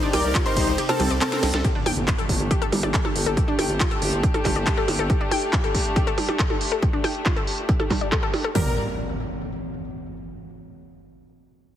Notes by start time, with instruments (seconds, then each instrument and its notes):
Already playing: string section C3 C4 D#4 G4
0.03 synth arpeggio sound D4
0.13 analog synth bass C2, supersaw synth A#4 D5, synth arpeggio sound G5, grand piano D6, open hi-hat, ride, percussion blips
0.24 analog synth bass C2, closed hi-hat
0.35 synth arpeggio sound F4, kick, clap, closed hi-hat, ride
0.46 supersaw synth D#4 C5, synth arpeggio sound A#4, grand piano C6, closed hi-hat
0.57 analog synth bass C2, kick, open hi-hat, ride
0.67 analog synth bass C2, closed hi-hat
0.78 synth arpeggio sound G4, closed hi-hat, ride
0.89 supersaw synth C4 A4, synth arpeggio sound A#4, grand piano A5, closed hi-hat, percussion blips
1.00 analog synth bass C2, synth arpeggio sound G3, clap, open hi-hat, ride, percussion blips
1.11 analog synth bass C2, synth arpeggio sound D5, closed hi-hat
1.21 supersaw synth C4 A4, synth arpeggio sound A#4, grand piano A5, clap, closed hi-hat, ride
1.32 synth arpeggio sound A#4, snare, closed hi-hat
1.43 analog synth bass C2, snare, open hi-hat, ride, percussion blips
1.54 analog synth bass C2, synth arpeggio sound A4, snare
1.64 string section A3 D4 G4, synth arpeggio sound G4, kick, closed hi-hat, impact
1.75 synth arpeggio sound D4
1.86 analog synth bass G1, synth arpeggio sound G5, open hi-hat, percussion blips
1.97 analog synth bass G1, closed hi-hat
2.08 synth arpeggio sound F4, kick, clap, closed hi-hat
2.18 synth arpeggio sound A4, closed hi-hat
2.29 analog synth bass G1, kick, open hi-hat
2.40 analog synth bass G1, closed hi-hat
2.51 synth arpeggio sound G4, kick, closed hi-hat
2.62 synth arpeggio sound A4, closed hi-hat
2.72 analog synth bass G1, synth arpeggio sound G3, open hi-hat, percussion blips
2.83 analog synth bass G1, synth arpeggio sound D5, closed hi-hat, percussion blips
2.94 synth arpeggio sound A4, kick, clap, closed hi-hat
3.05 synth arpeggio sound A4, percussion blips
3.16 analog synth bass G1, open hi-hat
3.26 analog synth bass G1, synth arpeggio sound A4, closed hi-hat
3.37 synth arpeggio sound G4, kick, closed hi-hat
3.48 synth arpeggio sound D4
3.59 analog synth bass G1, synth arpeggio sound G5, open hi-hat, percussion blips
3.69 analog synth bass G1, closed hi-hat
3.80 synth arpeggio sound F4, kick, clap, closed hi-hat
3.91 synth arpeggio sound A4, closed hi-hat
4.02 analog synth bass G1, open hi-hat
4.13 analog synth bass G1, closed hi-hat
4.23 synth arpeggio sound G4, kick, closed hi-hat
4.34 synth arpeggio sound A4, closed hi-hat, percussion blips
4.45 analog synth bass G1, synth arpeggio sound G3, kick, clap, open hi-hat, percussion blips
4.56 analog synth bass G1, synth arpeggio sound D5, closed hi-hat
4.67 synth arpeggio sound A4, kick, clap, closed hi-hat
4.77 synth arpeggio sound A4
4.88 analog synth bass G1, open hi-hat, percussion blips
4.99 analog synth bass G1, synth arpeggio sound A4, closed hi-hat
5.10 synth arpeggio sound G4, kick, closed hi-hat
5.21 synth arpeggio sound D4
5.31 synth arpeggio sound G5, open hi-hat, percussion blips
5.42 closed hi-hat
5.53 synth arpeggio sound F4, kick, clap, closed hi-hat
5.64 synth arpeggio sound A4, closed hi-hat
5.75 kick, open hi-hat
5.85 closed hi-hat
5.96 synth arpeggio sound G4, kick, closed hi-hat
6.07 synth arpeggio sound A4, closed hi-hat
6.18 synth arpeggio sound G3, open hi-hat, percussion blips
6.29 synth arpeggio sound D5, closed hi-hat, percussion blips
6.39 synth arpeggio sound A4, kick, clap, closed hi-hat
6.50 synth arpeggio sound A4, percussion blips
6.61 open hi-hat
6.72 synth arpeggio sound A4
6.82 synth arpeggio sound G4, kick, closed hi-hat
6.93 synth arpeggio sound D4
7.04 synth arpeggio sound G5, open hi-hat, percussion blips
7.15 closed hi-hat
7.26 synth arpeggio sound F4, kick, clap, closed hi-hat
7.36 synth arpeggio sound A4, closed hi-hat
7.47 open hi-hat
7.58 closed hi-hat
7.69 synth arpeggio sound G4, kick, closed hi-hat
7.80 synth arpeggio sound A4, closed hi-hat, percussion blips
7.90 synth arpeggio sound G3, kick, clap, open hi-hat, percussion blips
8.01 synth arpeggio sound D5
8.12 synth arpeggio sound A4, kick, clap, closed hi-hat
8.23 synth arpeggio sound A4
8.34 open hi-hat, percussion blips
8.44 synth arpeggio sound A4, closed hi-hat
8.55 analog synth bass G1, string section G3 G4 A#4 D5, synth arpeggio sound G4, supersaw synth A#4, kick, floor tom, open hi-hat, impact